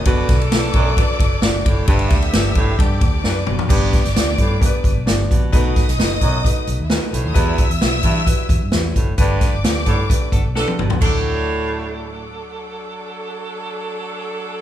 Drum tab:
CC |----------------|----------------|x---------------|----------------|
RD |x-xxx-x-x-x-x-x-|xxxxx-x-x-x-----|----------------|----------------|
HH |----------------|----------------|--xxx-x-x-x-x-x-|x-xxx-x-x-x-x-x-|
SD |--o-o-------o---|--o-o-------o---|--ooo-------o---|--ooo-------o---|
T1 |----------------|----------------|----------------|----------------|
T2 |----------------|--------------o-|----------------|----------------|
FT |----------------|---------------o|----------------|----------------|
BD |o-o---o-o-o---o-|o-o---o-o-o-----|o-o---o-o-o---o-|o-o---o-o-------|

CC |----------------|----------------|x---------------|----------------|
RD |----------------|----------------|----------------|----------------|
HH |x-xxx-x-x-x-x-x-|x-x-x-x-x-x-----|----------------|----------------|
SD |----o-------o---|--o-o-------o---|----------------|----------------|
T1 |----------------|-------------o--|----------------|----------------|
T2 |----------------|--------------o-|----------------|----------------|
FT |----------------|---------------o|----------------|----------------|
BD |o-o---o-o-o---o-|o-o---o-o-o-----|o---------------|----------------|